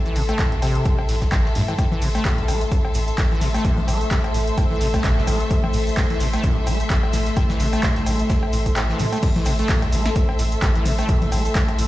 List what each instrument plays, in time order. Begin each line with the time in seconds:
Already playing: string section A4 E5 C6
0.06 acid bass E3, closed hi-hat
0.16 sub bass A1, acid bass B2, open hi-hat, shaker
0.29 acid bass A3, closed hi-hat, cowbell
0.39 acid bass A2, kick, snare, clap, closed hi-hat, shaker
0.52 acid bass A1, closed hi-hat
0.62 sub bass A1, acid bass C3, open hi-hat, cowbell, shaker
0.75 closed hi-hat
0.85 acid bass A2, kick, closed hi-hat, shaker
0.99 cowbell
1.09 sub bass A1, acid bass A2, open hi-hat, shaker
1.21 kick, snare, closed hi-hat
1.31 sub bass A1, acid bass A2, kick, snare, clap, closed hi-hat, cowbell, shaker
1.45 acid bass A1, snare
1.55 acid bass G2, sub bass A2, open hi-hat, shaker
1.68 acid bass E3, closed hi-hat, cowbell
1.78 acid bass A2, string machine A3 A4 C5 E5, kick, closed hi-hat, cowbell, shaker
1.92 acid bass E3, low conga
2.02 sub bass A1, acid bass B2, open hi-hat, shaker
2.15 acid bass A3, closed hi-hat, cowbell, shaker
2.25 acid bass A2, kick, snare, clap, closed hi-hat, shaker
2.38 acid bass A1, closed hi-hat
2.48 sub bass A1, acid bass A3, snare, open hi-hat, cowbell, shaker
2.61 closed hi-hat, shaker
2.71 acid bass A2, kick, closed hi-hat, shaker
2.85 cowbell
2.94 sub bass A1, acid bass A2, open hi-hat, shaker
3.08 closed hi-hat, shaker
3.18 sub bass A1, acid bass A2, kick, snare, clap, closed hi-hat, cowbell, shaker
3.31 acid bass E3
3.41 sub bass A1, acid bass B2, snare, open hi-hat, low conga, shaker
3.54 acid bass A3, closed hi-hat, cowbell, shaker
3.64 acid bass A2, kick, closed hi-hat, shaker
3.77 acid bass A1, closed hi-hat, low conga
3.88 sub bass A1, acid bass A3, open hi-hat, cowbell, shaker
4.01 closed hi-hat, shaker
4.11 acid bass A2, kick, snare, clap, closed hi-hat, shaker
4.24 closed hi-hat, cowbell
4.34 sub bass A1, acid bass A2, open hi-hat, shaker
4.47 closed hi-hat, shaker
4.57 acid bass A2, kick, closed hi-hat, cowbell, shaker
4.71 acid bass E3
4.81 sub bass A1, acid bass B2, open hi-hat, shaker
4.94 acid bass A3, kick, snare, closed hi-hat, cowbell, shaker
5.04 sub bass A1, acid bass A2, kick, snare, clap, closed hi-hat, shaker
5.17 acid bass A1, snare
5.27 sub bass A1, acid bass A3, open hi-hat, cowbell, low conga, shaker
5.40 closed hi-hat, shaker
5.50 acid bass A2, kick, closed hi-hat, shaker
5.64 cowbell, low conga
5.73 sub bass A1, acid bass A2, open hi-hat, shaker
5.87 closed hi-hat, shaker
5.97 acid bass A2, kick, snare, clap, closed hi-hat, cowbell, shaker
6.10 acid bass E3, closed hi-hat
6.20 sub bass A1, acid bass B2, snare, open hi-hat, shaker
6.33 acid bass A3, closed hi-hat, cowbell, shaker
6.43 acid bass A2, kick, closed hi-hat, shaker
6.57 acid bass A1
6.67 sub bass A1, acid bass A3, open hi-hat, cowbell, shaker
6.80 closed hi-hat, shaker
6.90 sub bass A1, acid bass A2, kick, snare, clap, closed hi-hat, shaker
7.03 cowbell
7.13 sub bass A1, acid bass A2, snare, open hi-hat, low conga, shaker
7.26 snare, closed hi-hat, shaker
7.36 acid bass A2, kick, closed hi-hat, cowbell, shaker
7.49 acid bass E3, snare, low conga, shaker
7.60 sub bass A1, acid bass B2, snare, open hi-hat, shaker
7.73 acid bass A3, closed hi-hat, cowbell, shaker
7.83 acid bass A2, kick, snare, clap, closed hi-hat, shaker
7.96 acid bass A1, snare, closed hi-hat
8.06 sub bass A1, acid bass A3, open hi-hat, cowbell, shaker
8.19 closed hi-hat, shaker
8.30 acid bass A2, kick, snare, closed hi-hat, shaker
8.43 cowbell
8.53 sub bass A1, acid bass A2, open hi-hat, shaker
8.66 kick, closed hi-hat, shaker
8.76 sub bass A1, acid bass A2, snare, clap, closed hi-hat, cowbell, shaker
8.89 acid bass E3, snare
8.99 sub bass A2, acid bass B2, open hi-hat, low conga, shaker
9.13 acid bass A3, closed hi-hat, cowbell, shaker
9.22 acid bass A2, string machine A3 A4 C5 E5, string section A4, kick, closed hi-hat, crash, shaker
9.36 acid bass E3, closed hi-hat, low conga
9.45 sub bass A1, acid bass B2, open hi-hat, cowbell, shaker
9.59 acid bass A3, closed hi-hat, shaker
9.69 acid bass A2, kick, snare, clap, closed hi-hat, shaker
9.82 acid bass A1, closed hi-hat, cowbell
9.92 sub bass A1, acid bass A3, snare, open hi-hat, shaker
10.05 snare, closed hi-hat, shaker
10.15 acid bass A2, kick, closed hi-hat, shaker
10.29 cowbell
10.39 sub bass A1, acid bass A2, open hi-hat, shaker
10.52 closed hi-hat, shaker
10.62 sub bass A1, acid bass A2, kick, snare, clap, closed hi-hat, cowbell, shaker
10.75 acid bass E3, closed hi-hat
10.85 sub bass A1, acid bass B2, snare, open hi-hat, low conga, shaker
10.99 acid bass A3, closed hi-hat, cowbell, shaker
11.08 acid bass A2, kick, closed hi-hat, shaker
11.22 acid bass A1, closed hi-hat, low conga
11.32 sub bass A1, acid bass A3, open hi-hat, cowbell, shaker
11.45 closed hi-hat, shaker
11.55 acid bass A2, kick, snare, clap, closed hi-hat, shaker
11.68 closed hi-hat, cowbell
11.79 sub bass A1, acid bass A2, open hi-hat, shaker